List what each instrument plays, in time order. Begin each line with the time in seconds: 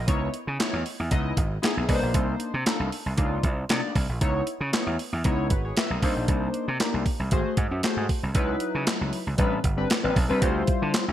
Already playing: analog polysynth A#4 D#5
0.07 slap bass C#2, analog polysynth B3 D#4 E4 C#5, kick, closed hi-hat
0.34 closed hi-hat
0.47 slap bass C#3
0.59 analog polysynth B3 D#4 E4 C#5, snare, clap, closed hi-hat
0.73 slap bass E2
0.86 open hi-hat
1.00 slap bass E2
1.11 slap bass C#2, analog polysynth B3 D#4 E4 D#5, kick, closed hi-hat
1.37 slap bass G#1, kick, closed hi-hat
1.62 analog polysynth B3 D#4 E4 G#4, snare, clap, closed hi-hat
1.77 slap bass B1
1.88 slap bass C2, analog polysynth A#3 D4 D#4 B4, kick, open hi-hat
1.95 analog polysynth C5
2.02 slap bass A#1
2.14 slap bass C2, kick, closed hi-hat
2.40 closed hi-hat
2.54 slap bass C3
2.66 analog polysynth A#3 D4 D#4 A4, snare, clap, closed hi-hat
2.80 slap bass C2
2.92 open hi-hat
3.06 slap bass C2
3.17 slap bass C#2, analog polysynth A#3 D4 D#4 F4, kick, closed hi-hat
3.43 slap bass C2, kick, closed hi-hat
3.69 slap bass C3, analog polysynth A#3 D4 D#4 D5, snare, clap, closed hi-hat
3.95 slap bass C2, kick, open hi-hat
4.09 slap bass A#1
4.21 slap bass C#2, analog polysynth B3 D#4 E4 C#5, kick, closed hi-hat
4.47 closed hi-hat
4.61 slap bass C#3
4.72 analog polysynth B3 D#4 E4 C#5, snare, clap, closed hi-hat
4.87 slap bass E2
4.99 open hi-hat
5.13 slap bass E2
5.24 slap bass C#2, analog polysynth B3 D#4 E4 C#5, kick, closed hi-hat
5.50 slap bass G#1, analog polysynth F#4 B4, kick, closed hi-hat
5.65 analog polysynth G#4 C#5
5.77 analog polysynth B4 E5, snare, clap, closed hi-hat
5.90 slap bass B1, analog polysynth A#4 D#5
6.02 slap bass C2, analog polysynth A#3 D4 D#4 C5, kick, open hi-hat
6.16 slap bass A#1
6.28 slap bass C2, kick, closed hi-hat
6.54 closed hi-hat
6.68 slap bass C3
6.80 analog polysynth A#3 D4 D#4 G4, snare, clap, closed hi-hat
6.94 slap bass C2
7.06 kick, open hi-hat
7.19 slap bass C2
7.31 slap bass G#1, analog polysynth A3 F#4 G#4 C5, kick, closed hi-hat
7.57 slap bass G#2, kick, closed hi-hat
7.71 slap bass F#2
7.83 analog polysynth A3 F#4 G#4 C5, snare, clap, closed hi-hat
7.97 slap bass G#2
8.09 kick, open hi-hat
8.23 slap bass C2
8.35 slap bass C#2, analog polysynth F#3 D#4 E4 B4, kick, closed hi-hat
8.60 closed hi-hat
8.75 slap bass C#3
8.87 snare, clap, closed hi-hat
9.01 slap bass C#2
9.13 open hi-hat
9.27 slap bass C#2
9.38 slap bass A1, analog polysynth G3 C4 D4 B4, kick, closed hi-hat
9.64 slap bass G1, kick, closed hi-hat
9.77 analog polysynth G3 C4 D4 B4
9.90 snare, clap, closed hi-hat
10.03 slap bass A1, analog polysynth G3 C4 D4 B4
10.16 slap bass B1, kick, open hi-hat
10.29 slap bass C2, analog polysynth G3 C4 D4 B4
10.41 slap bass D2, analog polysynth G3 E4 F4 C5, kick, closed hi-hat
10.67 kick, closed hi-hat
10.82 slap bass D3
10.94 snare, clap, closed hi-hat
11.08 slap bass D2